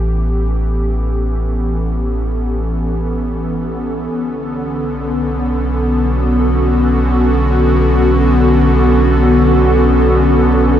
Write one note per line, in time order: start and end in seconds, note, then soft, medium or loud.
0.00 4.08 A1 medium
0.00 4.13 E3 medium
0.00 10.80 B3 medium
0.00 10.80 C#4 medium
0.00 4.14 G4 medium
0.00 10.80 A4 medium
4.13 10.80 B1 medium
4.13 10.80 D3 medium
5.79 10.80 F#4 medium